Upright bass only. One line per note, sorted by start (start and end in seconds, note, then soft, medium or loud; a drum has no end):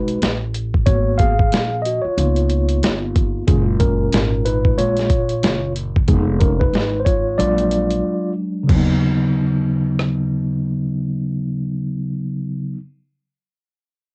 0.00 0.18 B1 medium
0.22 0.84 A1 medium
0.87 1.49 G#1 loud
1.52 2.02 A#1 loud
2.05 muted upright bass stroke soft
2.18 2.79 C#2 loud
2.83 3.45 G1 medium
3.48 4.10 F#1 loud
4.13 4.75 G#1 medium
4.78 5.40 A#1 medium
5.43 6.05 F#1 medium
6.08 6.70 F1 loud
6.73 7.35 G#1 medium
7.39 8.01 A#1 loud
8.69 12.76 D#2 loud